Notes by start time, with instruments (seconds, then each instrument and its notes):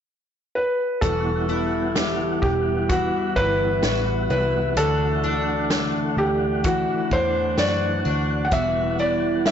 0.55 felt piano B4
1.01 picked electric bass E1, twelve-string acoustic guitar E2 F#4, tonewheel organ E3 G3 B3 E4 F#5, felt piano A4, kick, closed hi-hat
1.49 twelve-string acoustic guitar E4
1.96 twelve-string acoustic guitar G3, snare, closed hi-hat
2.42 picked electric bass E1, felt piano G4, kick
2.89 twelve-string acoustic guitar E3, felt piano F#4, kick, closed hi-hat
3.36 picked electric bass G1, twelve-string acoustic guitar E4, felt piano B4, kick
3.83 picked electric bass A1, twelve-string acoustic guitar F#4, snare, closed hi-hat
4.30 picked electric bass C2, twelve-string acoustic guitar E4, felt piano B4
4.77 picked electric bass D2, twelve-string acoustic guitar D3 F#4, tonewheel organ A3 D4 F#5, felt piano A4, closed hi-hat
5.24 twelve-string acoustic guitar D4
5.70 twelve-string acoustic guitar A3, snare, closed hi-hat
6.17 picked electric bass D2, felt piano G4
6.64 twelve-string acoustic guitar E3, felt piano F#4, kick, closed hi-hat
7.11 picked electric bass E2, twelve-string acoustic guitar D4, felt piano C5, kick
7.58 picked electric bass F#2, twelve-string acoustic guitar F#4, felt piano D5, snare, closed hi-hat
8.05 picked electric bass D2, twelve-string acoustic guitar D4
8.45 felt piano F#5
8.52 picked electric bass E1, twelve-string acoustic guitar E2 F#4, tonewheel organ E3 G3 B3, felt piano E5, kick, closed hi-hat
8.99 twelve-string acoustic guitar E4, felt piano D5
9.46 twelve-string acoustic guitar G3, felt piano E5, snare, closed hi-hat